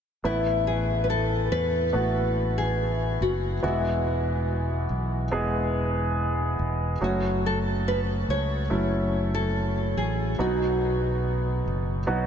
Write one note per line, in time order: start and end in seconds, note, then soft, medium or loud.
0.24 1.47 A1 medium
0.24 1.47 A2 soft
0.24 1.85 A3 soft
0.24 1.85 B3 soft
0.24 1.85 E4 soft
0.24 0.67 E4 medium
0.24 1.85 B4 medium
0.67 1.03 G#4 medium
1.04 1.09 B4 medium
1.10 1.51 A4 medium
1.51 1.91 E2 medium
1.51 2.53 B4 medium
1.93 3.16 A1 medium
1.93 3.54 A3 medium
1.93 3.54 B3 soft
1.93 3.54 E4 soft
1.93 3.54 F#4 medium
2.58 3.17 G#4 medium
3.21 3.60 F#1 medium
3.21 3.61 F#4 medium
3.63 4.86 E1 medium
3.63 4.86 E3 soft
3.63 5.23 G#3 medium
3.63 5.23 B3 soft
3.63 5.23 E4 medium
3.63 4.86 E4 medium
3.63 5.24 F#4 medium
4.90 5.29 B1 medium
5.31 6.55 E1 medium
5.31 6.92 G#3 medium
5.31 6.92 B3 medium
5.31 6.93 E4 medium
5.31 6.93 G#4 medium
6.59 6.98 E1 medium
7.01 8.24 F#1 medium
7.01 8.61 F#3 medium
7.01 8.62 A3 soft
7.01 8.62 C#4 medium
7.01 8.62 F#4 medium
7.01 7.42 F#4 medium
7.46 7.57 A4 medium
7.88 7.99 B4 medium
8.28 8.67 C#2 medium
8.28 9.34 C#5 medium
8.70 9.93 F#1 medium
8.70 10.30 F#3 medium
8.70 10.30 A3 soft
8.70 10.31 C#4 soft
8.70 10.31 E4 medium
9.34 9.97 A4 medium
9.97 10.36 A1 medium
9.97 10.36 G#4 medium
10.38 11.62 B1 medium
10.38 11.62 B2 soft
10.38 11.99 F#3 medium
10.38 11.99 B3 soft
10.38 11.99 D#4 soft
10.38 12.00 F#4 medium
10.38 11.62 F#4 medium
11.65 12.05 F#1 medium
12.07 12.27 B1 medium
12.07 12.27 F#3 medium
12.07 12.27 B3 medium
12.07 12.27 D#4 medium
12.07 12.27 F#4 medium